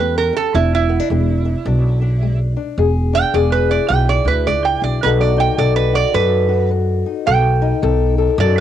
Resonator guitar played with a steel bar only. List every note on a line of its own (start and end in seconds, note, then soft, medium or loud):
0.00 0.17 B4 medium
0.18 0.36 A#4 loud
0.37 0.54 A4 loud
0.55 0.73 E4 medium
0.75 2.38 E4 loud
3.15 3.34 G5 loud
3.34 3.53 D5 medium
3.52 3.71 B4 loud
3.71 3.90 D5 loud
3.89 4.08 G5 loud
4.09 4.27 D5 loud
4.28 4.46 B4 loud
4.47 4.65 D5 loud
4.65 4.83 G5 medium
4.84 5.02 D5 medium
5.03 5.21 B4 loud
5.21 5.39 D5 medium
5.40 5.58 G5 medium
5.58 5.76 D5 loud
5.76 5.95 B4 medium
5.95 6.14 D5 loud
6.14 6.69 B4 loud
7.27 8.35 G5 medium
8.40 8.58 D5 loud